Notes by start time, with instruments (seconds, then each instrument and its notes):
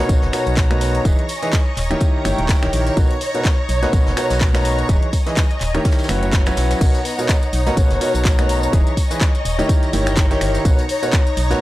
Already playing: string section D#4 C#5, string machine C#5 A#5
0.00 grand piano B2 D#4 F#4 A#4 B4 C#5, string section A#5
0.09 fm bass B1, kick, closed hi-hat, tambourine
0.22 fm bass F#1, snare
0.33 grand piano B2 D#4 F#4 A#4 B4 C#5, finger snap, open hi-hat, tambourine
0.46 fm bass B1, closed hi-hat, tambourine
0.57 kick, snare, clap, closed hi-hat, tambourine
0.70 grand piano B2 D#4 F#4 A#4 B4 C#5, finger snap, snare, closed hi-hat, high conga
0.81 snare, open hi-hat, tambourine
0.95 closed hi-hat, tambourine
1.05 fm bass E1, grand piano D#4 E4 G#4 B4 D#5, kick, closed hi-hat, tambourine
1.19 closed hi-hat
1.29 open hi-hat, tambourine
1.39 grand piano E3 D#4 E4 G#4 B4 D#5, string section D#5 G#5, snare, closed hi-hat, tambourine
1.53 kick, snare, clap, closed hi-hat, tambourine
1.77 fm bass D#1, clap, open hi-hat, tambourine
1.90 grand piano D#3 D#4 E4 G4 A#4 C#5, finger snap, closed hi-hat, tambourine, high conga
2.00 kick, closed hi-hat, tambourine
2.18 string section C#5
2.25 fm bass G1, grand piano D#3 D#4 E4 G4 A#4 C#5, finger snap, open hi-hat, tambourine, high conga
2.32 string section G5
2.38 fm bass D#1, closed hi-hat, tambourine, high conga
2.49 kick, snare, clap, closed hi-hat, tambourine
2.62 fm bass D#1, grand piano D#3 D#4 E4 G4 A#4 C#5, finger snap, snare, closed hi-hat
2.73 fm bass A#1, open hi-hat, tambourine
2.87 snare, closed hi-hat, tambourine
2.97 fm bass B1, grand piano B2 D#4 F#4 A#4 B4 C#5, string section D#4, kick, closed hi-hat, tambourine
3.11 closed hi-hat
3.21 open hi-hat, tambourine
3.34 grand piano B2 D#4 F#4 A#4 B4 C#5, closed hi-hat, tambourine
3.45 kick, snare, clap, closed hi-hat, tambourine
3.69 fm bass B1, open hi-hat, tambourine
3.83 grand piano B2 D#4 F#4 A#4 B4 C#5, string section A#5, snare, closed hi-hat, tambourine, high conga
3.93 fm bass B1, kick, closed hi-hat, tambourine
4.06 fm bass F#1, snare
4.17 grand piano B2 D#4 F#4 A#4 B4 C#5, finger snap, snare, open hi-hat, tambourine
4.30 fm bass B1, snare, closed hi-hat, tambourine
4.40 kick, snare, clap, closed hi-hat, tambourine
4.53 grand piano B2 D#4 F#4 A#4 B4 C#5, finger snap, snare, closed hi-hat, tambourine, high conga
4.65 open hi-hat, tambourine
4.79 closed hi-hat, tambourine
4.89 fm bass E1, grand piano E3 D#4 E4 G#4 B4 D#5, kick, closed hi-hat, tambourine
5.03 closed hi-hat
5.13 kick, open hi-hat, tambourine
5.22 grand piano E3 D#4 E4 G#4 B4 D#5, string section D#5 G#5
5.27 snare, closed hi-hat, tambourine
5.37 kick, snare, clap, closed hi-hat, tambourine
5.51 closed hi-hat
5.61 fm bass D#1, clap, open hi-hat, tambourine
5.75 grand piano D#3 D#4 E4 G4 A#4 C#5, finger snap, closed hi-hat, tambourine, high conga
5.85 kick, snare, closed hi-hat, tambourine
5.91 string section C#5 G5, snare, tambourine
5.99 snare, tambourine
6.03 snare, tambourine
6.09 fm bass F#1, grand piano F#3 C#4 E4 F#4 B4 C#5, finger snap, open hi-hat, tambourine, high conga
6.23 closed hi-hat, tambourine, high conga
6.32 kick, snare, clap, closed hi-hat, tambourine
6.46 grand piano F#3 C#4 E4 F#4 B4 C#5, finger snap, snare, closed hi-hat, tambourine
6.55 fm bass B1, string section B3 F#5, snare, open hi-hat, tambourine
6.71 snare, closed hi-hat, tambourine
6.81 fm bass B1, string section D#4, grand piano D#4 F#4 A#4 B4 C#5, string machine C#5 A#5, kick, closed hi-hat, crash, tambourine
6.94 closed hi-hat, tambourine
7.01 string section C#5, open hi-hat
7.06 tambourine
7.19 grand piano B2 D#4 F#4 A#4 B4 C#5, closed hi-hat, tambourine
7.29 kick, snare, clap, closed hi-hat, tambourine
7.43 closed hi-hat, tambourine
7.53 fm bass B1, open hi-hat, tambourine
7.66 grand piano B2 D#4 F#4 A#4 B4 C#5, string section A#5, snare, closed hi-hat, tambourine, high conga
7.77 fm bass B1, kick, closed hi-hat, tambourine
7.91 fm bass F#1, snare, closed hi-hat, tambourine
8.01 grand piano B2 D#4 F#4 A#4 B4 C#5, open hi-hat, tambourine
8.14 fm bass B1, closed hi-hat, tambourine
8.25 kick, snare, clap, closed hi-hat, tambourine
8.38 grand piano B2 D#4 F#4 A#4 B4 C#5, finger snap, snare, closed hi-hat, tambourine, high conga
8.49 snare, open hi-hat, tambourine
8.62 tambourine
8.73 fm bass E1, grand piano E3 D#4 E4 G#4 B4 D#5, kick, closed hi-hat, tambourine
8.87 closed hi-hat, tambourine
8.97 kick, open hi-hat, tambourine
9.07 grand piano E3 D#4 E4 G#4 B4 D#5, string section D#5 G#5, snare
9.11 closed hi-hat, tambourine
9.21 kick, snare, clap, closed hi-hat, tambourine
9.35 closed hi-hat, tambourine
9.45 fm bass D#1, open hi-hat, tambourine
9.59 grand piano D#3 D#4 E4 G4 A#4 C#5, closed hi-hat, tambourine, high conga
9.69 kick, closed hi-hat, tambourine
9.83 closed hi-hat, tambourine
9.93 fm bass G1, grand piano D#3 D#4 E4 G4 A#4 C#5, open hi-hat, tambourine, high conga
10.00 string section C#5 G5
10.06 finger snap, closed hi-hat, tambourine, high conga
10.16 kick, snare, clap, closed hi-hat, tambourine
10.31 grand piano D#3 D#4 E4 G4 A#4 C#5, snare, closed hi-hat, tambourine
10.41 fm bass G1, finger snap, open hi-hat, tambourine
10.54 snare, closed hi-hat, tambourine
10.65 fm bass B1, grand piano B2 D#4 F#4 A#4 B4 C#5, string section D#4, kick, closed hi-hat, tambourine
10.78 closed hi-hat, tambourine
10.89 open hi-hat, tambourine
11.03 grand piano B2 D#4 F#4 A#4 B4 C#5, closed hi-hat, tambourine
11.13 kick, snare, clap, closed hi-hat, tambourine
11.27 closed hi-hat, tambourine
11.37 fm bass B1, open hi-hat, tambourine
11.50 grand piano B2 D#4 F#4 A#4 B4 C#5, string section A#5, snare, closed hi-hat, tambourine, high conga